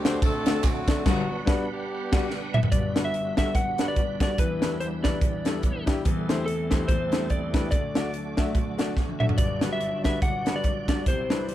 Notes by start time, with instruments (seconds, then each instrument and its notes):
Already playing: grand piano D2 D3, tonewheel organ D3 A3 C4 D4 A4, horn section G3 C4 F#4 G4
0.04 grand piano A3 D4 F#4 C5, snare, ride, tambourine
0.22 horn section A3 C4 F#4 A4, kick, ride, tambourine
0.46 grand piano A3 D4 F#4 A4, snare, ride, tambourine
0.63 horn section F#3 A3 C4 F#4, kick, clap, ride, tambourine
0.88 grand piano A3 D4 F#4 D5, kick, snare, ride, tambourine
1.04 grand piano G1 G2, horn section F#3 B3 D4 F#4, tonewheel organ G3 B3 D4 B4 F#5, kick, snare, crash
1.46 grand piano G3 D4 F#4 B4, kick, snare
1.71 horn section G3 B3 D4 G4
2.12 grand piano G3 D4 F#4, kick, snare, crash
2.30 snare
2.54 electric slide guitar E5, mid tom
2.63 floor tom
2.72 grand piano G1 G2, tonewheel organ G3 B3 D4 F#4 B4, string section G3 B3 D4 F#4, electric slide guitar D5, kick, closed hi-hat
2.95 grand piano G3 D4 F#4 B4, snare, closed hi-hat
3.05 electric slide guitar E5
3.14 closed hi-hat
3.37 grand piano G3 D4 F#4 A4, electric slide guitar E5, kick, snare, closed hi-hat
3.55 electric slide guitar F#5, kick, closed hi-hat
3.78 grand piano G3 D4 F#4 B4, snare, closed hi-hat
3.88 electric slide guitar D5
3.96 kick, closed hi-hat
4.20 grand piano G3 D4 F#4 D5, electric slide guitar D5, kick, snare, closed hi-hat
4.38 grand piano E2 E3, tonewheel organ B3 E4, string section E4, electric slide guitar B4, kick, closed hi-hat
4.61 grand piano G3 D4 E4 B4, snare, closed hi-hat
4.80 electric slide guitar C5, closed hi-hat
5.03 grand piano G3 D4 E4 B4, electric slide guitar D5, kick, snare, closed hi-hat
5.21 kick, closed hi-hat
5.45 grand piano G3 D4 E4 A4, snare, closed hi-hat
5.63 kick, closed hi-hat
5.86 grand piano G3 D4 E4 G4, kick, snare, closed hi-hat
6.05 grand piano E2 E3, tonewheel organ E2 A3 C4 E4 A4, string section E2 A3 C4, kick, closed hi-hat
6.29 grand piano A3 E4 G4 C5, snare, closed hi-hat
6.46 electric slide guitar A4, closed hi-hat
6.70 grand piano A3 E4 G4 C5, kick, snare, closed hi-hat
6.88 electric slide guitar C5, kick, closed hi-hat
7.12 grand piano A3 E4 G4 C5, snare, closed hi-hat
7.30 electric slide guitar D5, kick, closed hi-hat
7.53 grand piano A3 E4 G4 B4, kick, snare, closed hi-hat
7.71 grand piano D2 D3, string section F#3 A3 D4 F#4, tonewheel organ D4 F#4, electric slide guitar D5, kick, closed hi-hat
7.95 grand piano A3 D4 F#4 D5, snare, closed hi-hat
8.14 closed hi-hat
8.37 grand piano A3 D4 F#4 E5, kick, snare, closed hi-hat
8.55 kick, closed hi-hat
8.78 grand piano A3 D4 F#4 D5, snare, closed hi-hat
8.97 kick, snare
9.09 high tom
9.20 grand piano A3 D4 F#4 E5, electric slide guitar E5, mid tom
9.29 floor tom
9.38 grand piano G1 G2, string section D3, tonewheel organ F#3 G3 D5, electric slide guitar D5, kick, closed hi-hat
9.61 grand piano G3 D4 F#4 B4, snare, closed hi-hat
9.73 electric slide guitar E5
9.81 closed hi-hat
10.04 grand piano G3 D4 F#4 B4, electric slide guitar E5, kick, snare, closed hi-hat
10.22 electric slide guitar F#5, kick, closed hi-hat
10.46 grand piano G3 D4 F#4 B4, snare, closed hi-hat
10.56 electric slide guitar D5
10.64 kick, closed hi-hat
10.88 grand piano G3 D4 F#4 D5, electric slide guitar D5, kick, snare, closed hi-hat
11.06 grand piano C2 C3, string section E3 C4 E4, tonewheel organ C4 E4, electric slide guitar C5, kick, closed hi-hat
11.30 grand piano G3 C4 E4 B4, snare, closed hi-hat
11.49 closed hi-hat